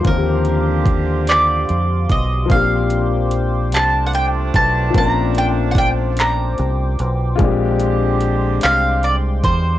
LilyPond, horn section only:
\new Staff \with { instrumentName = "Horn section" } { \time 6/8 \key bes \major \tempo 4. = 49 <d c' g'>2~ <d c' g'>8 r8 | r4. <f a d'>4.~ | <f a d'>2~ <f a d'>8 r8 | <d c' g'>2~ <d c' g'>8 r8 | }